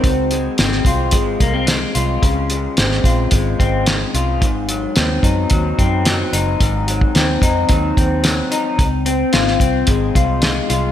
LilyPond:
<<
  \new Staff \with { instrumentName = "Clean electric guitar" } { \time 4/4 \key des \major \tempo 4 = 110 r8 aes8 c'8 f'8 aes8 bes16 c'16 aes8 f'8 | des8 aes8 c'8 f'8 aes8 c'8 aes8 f'8 | aes,8 ges8 c'8 ees'8 ges8 c'8 ges8 ees'8 | aes,8 ges8 c'8 ees'8 ges8 c'8 ges8 ees'8 |
r8 c'8 f'8 c'8 aes8 f'8 aes8 f'8 | }
  \new Staff \with { instrumentName = "Fingered electric bass" } { \clef bass \time 4/4 \key des \major des,4 aes,,8 c,8 aes,,8 c,4 c,8 | des,4 aes,,8 bes,,8 aes,,8 aes,,4 c,8 | aes,,4 ees,8 ges,8 ees,8 ges,4 ges,,8 | aes,,4 ees,8 f,8 ees,8 ees,4 r8 |
des,4 aes,,8 c,8 aes,,8 c,4 c,8 | }
  \new DrumStaff \with { instrumentName = "Drums" } \drummode { \time 4/4 <hh bd>8 hh8 <hh sn>16 sn16 <hh bd>8 <hh bd>8 <hh bd>8 <hh sn>8 hh8 | <hh bd>8 hh8 <hh sn>16 sn16 <hh bd>8 <hh bd>8 <hh bd>8 <hh sn>8 hh8 | <hh bd>8 hh8 <hh sn>8 <hh bd>8 <hh bd>8 <hh bd>8 <hh sn>8 hh8 | <hh bd>8 hh16 bd16 <hh sn>8 <hh bd>8 <hh bd>8 <hh bd>8 <hh sn>8 hh8 |
<hh bd>8 hh8 <hh sn>16 sn16 <hh bd>8 <hh bd>8 <hh bd>8 <hh sn>8 hh8 | }
>>